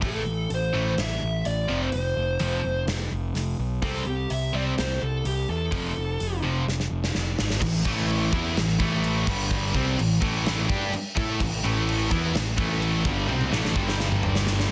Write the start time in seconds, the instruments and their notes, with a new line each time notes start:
0.01 picked electric bass A1, overdriven electric guitar A2 E3 A3, kick, open hi-hat
0.06 lead electric guitar A4
0.26 picked electric bass A1
0.50 picked electric bass A1, open hi-hat
0.55 lead electric guitar C5
0.74 picked electric bass A1, overdriven electric guitar A2 E3 A3
0.98 picked electric bass A1, lead electric guitar E5, snare, open hi-hat
1.23 picked electric bass A1
1.45 picked electric bass A1, lead electric guitar D5, open hi-hat
1.68 picked electric bass F1, overdriven electric guitar F2 C3 F3
1.82 lead electric guitar C5
1.92 picked electric bass F1, lead electric guitar C5, open hi-hat
2.17 picked electric bass F1
2.39 picked electric bass F1, overdriven electric guitar F2 C3 F3, open hi-hat
2.65 picked electric bass F1
2.87 picked electric bass F1, snare, open hi-hat
3.12 picked electric bass F1
3.34 picked electric bass F1, snare, open hi-hat
3.59 picked electric bass B1
3.82 picked electric bass C2, overdriven electric guitar C3 G3 C4, lead electric guitar A4, kick, open hi-hat
4.06 picked electric bass C2, lead electric guitar G4
4.30 picked electric bass C2, lead electric guitar E5, open hi-hat
4.54 picked electric bass C2, overdriven electric guitar C3 G3 C4, lead electric guitar D5
4.78 picked electric bass C2, lead electric guitar C5, snare, open hi-hat
5.02 picked electric bass C2, lead electric guitar A4
5.25 picked electric bass C2, lead electric guitar G4, open hi-hat
5.49 picked electric bass E2, lead electric guitar A4
5.72 picked electric bass F1, overdriven electric guitar F2 C3 F3, kick, open hi-hat
5.97 picked electric bass F1
6.20 picked electric bass F1, open hi-hat
6.43 picked electric bass F1, overdriven electric guitar F2 C3 F3
6.67 picked electric bass F1, snare
6.80 snare
6.91 picked electric bass F1
7.04 snare
7.15 picked electric bass F1, snare
7.39 picked electric bass G#1, snare
7.50 snare
7.61 picked electric bass A1, overdriven electric guitar A2 E3, kick, crash
7.84 picked electric bass A1, overdriven electric guitar A2 E3 A3, kick, crash
8.10 crash
8.33 overdriven electric guitar E3 B3 E4, kick, crash
8.55 picked electric bass A1, overdriven electric guitar A2 E3, snare, crash
8.69 snare
8.79 picked electric bass A1, overdriven electric guitar A2 E3 A3, kick, crash
9.04 crash
9.26 overdriven electric guitar G2 D3 G3, kick, crash
9.51 kick, crash
9.74 picked electric bass C2, overdriven electric guitar C3 G3 C4, kick, crash
9.98 picked electric bass A1, overdriven electric guitar A2 E3, crash
10.20 picked electric bass A1, overdriven electric guitar A2 E3 A3, kick, crash
10.46 snare, crash
10.69 picked electric bass G2, overdriven electric guitar G3 D4 G4, kick, crash
10.93 muted overdriven electric guitar stroke, muted distorted electric guitar stroke, muted picked electric bass stroke, crash
11.15 picked electric bass A2, overdriven electric guitar A3 E4 A4, kick, crash
11.40 picked electric bass A1, overdriven electric guitar A2 E3, kick, crash
11.63 picked electric bass A1, overdriven electric guitar A2 E3 A3, crash
11.89 crash
12.10 picked electric bass E2, overdriven electric guitar E3 B3 E4, kick, crash
12.34 picked electric bass A1, overdriven electric guitar A2 E3, snare, crash
12.56 picked electric bass A1, overdriven electric guitar A2 E3 A3, kick, crash
12.82 crash
13.05 picked electric bass G1, overdriven electric guitar G2 D3 G3, kick, crash
13.27 picked electric bass C2, overdriven electric guitar C3 G3 C4, high tom
13.41 high tom
13.51 picked electric bass A1, overdriven electric guitar A2 E3 A3, snare
13.65 snare
13.74 picked electric bass G1, overdriven electric guitar G2 D3 G3, kick
13.89 snare
14.00 snare
14.12 mid tom
14.23 mid tom
14.35 snare
14.47 snare
14.60 snare